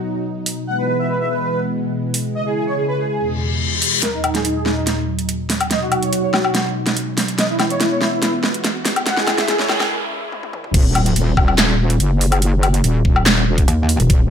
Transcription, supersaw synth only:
0.67 0.76 F#5 loud
0.78 0.86 B4 medium
0.88 0.97 B4 medium
0.99 1.07 E5 medium
1.09 1.18 B4 medium
1.20 1.28 E5 loud
1.30 1.39 B4 medium
1.41 1.49 B4 medium
1.51 1.60 B4 medium
2.35 2.44 D#5 medium
2.46 2.54 G#4 medium
2.56 2.65 G#4 medium
2.67 2.75 C#5 medium
2.77 2.86 G#4 medium
2.88 2.96 B4 loud
2.98 3.07 G#4 medium
3.09 3.17 G#4 medium
3.19 3.28 G#4 medium
4.03 4.12 A#4 medium
4.14 4.22 D#4 medium
4.24 4.33 D#4 medium
4.35 4.43 G#4 medium
4.45 4.54 D#4 medium
4.56 4.64 G#4 loud
4.66 4.74 D#4 medium
4.77 4.85 D#4 medium
4.87 4.95 D#4 medium
5.71 5.79 D#5 loud
5.81 5.90 F#4 medium
5.92 6.00 F#4 medium
6.02 6.11 C#5 medium
6.13 6.21 F#4 medium
6.23 6.32 C#5 loud
6.33 6.42 F#4 medium
6.44 6.52 F#4 medium
6.54 6.63 F#4 medium
7.38 7.47 D#5 loud
7.49 7.58 E4 medium
7.60 7.68 E4 medium
7.70 7.78 C#5 medium
7.81 7.89 E4 medium
7.91 7.99 C#5 medium
8.01 8.10 E4 medium
8.12 8.20 E4 medium
8.23 8.31 E4 medium
9.06 9.15 F#5 loud
9.17 9.25 G#4 medium
9.27 9.36 G#4 medium
9.38 9.46 E5 medium
9.48 9.57 G#4 medium
9.59 9.67 C#5 loud
9.69 9.78 G#4 medium
9.80 9.88 G#4 medium

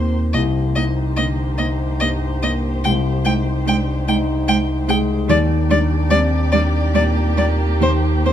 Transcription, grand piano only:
0.00 0.31 D#2 medium
0.00 0.18 A#2 soft
0.00 0.37 A#3 soft
0.00 0.37 C4 soft
0.34 2.80 C2 medium
0.76 1.43 D#4 soft
1.18 1.59 D3 soft
1.60 2.26 D#4 medium
2.00 2.67 G2 soft
2.43 2.84 A#3 soft
2.85 5.25 C2 medium
3.26 3.92 D#4 medium
3.66 4.07 D4 soft
4.08 4.73 D#4 medium
4.89 5.29 G#3 medium
5.29 7.77 D#2 medium
5.70 6.36 D4 medium
6.10 6.52 C4 medium
6.53 7.20 D4 medium
6.95 7.64 A#2 medium
7.36 7.81 A#3 soft
7.80 8.33 D#2 medium
8.25 8.33 C4 soft

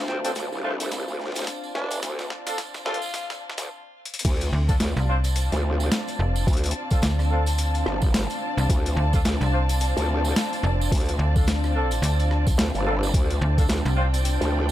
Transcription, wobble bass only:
0.08 0.34 D2 loud
0.36 0.50 D2 loud
0.52 1.05 C2 loud
1.08 1.45 D2 loud
1.75 2.01 F1 medium
2.03 2.29 D2 loud
2.86 3.00 D2 loud
3.58 3.69 D2 loud
4.25 4.51 D2 loud
4.81 4.94 D2 loud
5.52 5.90 D2 loud
6.47 6.73 D2 loud
7.86 8.28 G1 loud
8.69 8.95 D2 loud
9.25 9.38 D2 loud
9.97 10.34 D2 loud
10.92 11.18 D2 loud
12.58 12.72 D2 loud
12.74 13.12 G1 loud
13.14 13.40 D2 loud
13.69 13.83 D2 loud
14.41 14.72 D2 loud

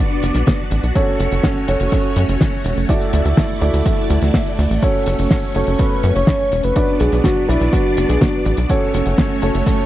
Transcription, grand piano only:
0.95 1.65 C#4 medium
0.95 1.65 F#4 medium
0.95 1.65 A4 medium
0.95 1.65 C#5 loud
1.68 2.86 C#4 medium
1.68 2.86 F#4 medium
1.68 2.86 A4 medium
1.68 2.86 C#5 medium
2.89 3.59 E4 medium
2.89 3.59 F#4 medium
2.89 3.59 A4 medium
2.89 3.59 D5 loud
3.61 4.80 E4 medium
3.61 4.80 F#4 medium
3.61 4.80 A4 medium
3.61 4.80 D5 medium
4.83 5.52 C#4 medium
4.83 5.52 F#4 medium
4.83 5.52 A4 medium
4.83 5.52 C#5 loud
5.55 6.73 C#4 medium
5.55 6.73 F#4 medium
5.55 6.73 A4 medium
5.55 6.73 C#5 medium
6.76 7.46 D4 medium
6.76 7.46 F#4 medium
6.76 7.46 B4 medium
6.76 7.46 D5 loud
7.49 8.67 D4 medium
7.49 8.67 F#4 medium
7.49 8.67 B4 medium
7.49 8.67 D5 medium
8.70 9.39 C#4 medium
8.70 9.39 F#4 medium
8.70 9.39 A4 medium
8.70 9.39 C#5 loud
9.42 9.86 C#4 medium
9.42 9.86 F#4 medium
9.42 9.86 A4 medium
9.42 9.86 C#5 medium

